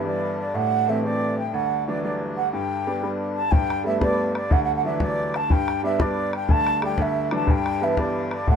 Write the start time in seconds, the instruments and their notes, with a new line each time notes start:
Already playing: upright piano G2, accordion G2 D3
0.04 upright piano E3 G3 B3, flute D5
0.40 flute D5
0.54 upright piano A2, flute F#5
0.88 upright piano E3 A3 C4, flute E5
1.03 upright piano E3 A3 C4, flute D5
1.38 flute G5
1.53 upright piano D2, flute F#5
1.87 upright piano E3 F#3 D4, flute D5
2.03 upright piano E3 F#3 D4, flute D5
2.37 flute F#5
2.52 upright piano G2, flute G5
2.87 upright piano G3 B3 D4
3.03 upright piano G3 B3 D4
3.36 flute A5
3.51 accordion G2 D3, upright piano G2, flute G5, bodhran
3.70 bodhran
3.84 upright piano G3 A3 B3, flute E5
4.00 upright piano G3 A3 B3, flute D5, bodhran
4.35 flute D5, bodhran
4.50 upright piano D2, flute F#5, bodhran
4.63 flute F#5
4.75 flute F#5
4.84 upright piano E3 F#3 D4, flute E5
5.00 upright piano E3 F#3 D4, flute D5, bodhran
5.34 flute A5, bodhran
5.50 upright piano G2, flute G5, bodhran
5.68 bodhran
5.83 upright piano G3 B3 D4, flute E5
5.99 upright piano G3 B3 D4, flute D5, bodhran
6.33 flute G5, bodhran
6.49 upright piano D2, flute A5, bodhran
6.67 bodhran
6.82 upright piano G3 A3 D4, flute G5, bodhran
6.98 upright piano D2, flute E5, bodhran
7.31 upright piano E3 F#3 D4, flute A5, bodhran
7.46 upright piano G2, accordion G2 D3, flute G5, bodhran
7.66 bodhran
7.81 upright piano E3 G3 B3, flute E5
7.97 upright piano E3 G3 B3, flute D5, bodhran
8.31 flute D5, bodhran
8.47 upright piano A2, flute F#5, bodhran